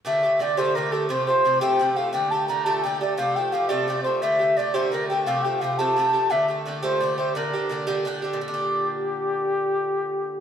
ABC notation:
X:1
M:6/8
L:1/16
Q:3/8=115
K:Gdor
V:1 name="Flute"
e4 d2 c2 B2 A2 | c2 c4 g4 f2 | g2 a2 b2 a3/2 a/2 g2 d2 | f2 g2 f2 d4 c2 |
e4 d2 c2 B2 g2 | f2 g2 f2 a6 | e4 z2 c4 c2 | B8 z4 |
G12- | G12 |]
V:2 name="Bouzouki"
[B,,D,A,G]2 [D,A,G]2 [B,,D,A,G]2 [B,,D,A,G]2 [B,,D,A,G]2 [D,A,G]2 | [C,F,A,G]2 [F,A,G]2 [C,F,A,G]2 [C,F,A,G]2 [C,F,A,G]2 [F,A,G]2 | [B,,D,A,G]2 [D,A,G]2 [B,,D,A,G]2 [B,,D,A,G]2 [B,,D,A,G]2 [D,A,G]2 | [C,F,A,G]2 [F,A,G]2 [C,F,A,G]2 [C,F,A,G]2 [C,F,A,G]2 [F,A,G]2 |
[B,,D,A,G]2 [D,A,G]2 [B,,D,A,G]2 [B,,D,A,G]2 [B,,D,A,G]2 [D,A,G]2 | [C,F,A,G]2 [F,A,G]2 [C,F,A,G]2 [C,F,A,G]2 [C,F,A,G]2 [F,A,G]2 | [B,,D,A,G]2 [D,A,G]2 [B,,D,A,G]2 [B,,D,A,G]2 [B,,D,A,G]2 [D,A,G]2 | [B,,D,DG]2 [D,DG]2 [B,,D,DG]2 [B,,D,DG]2 [B,,D,DG]2 [D,DG]2 |
[B,,D,DG]12- | [B,,D,DG]12 |]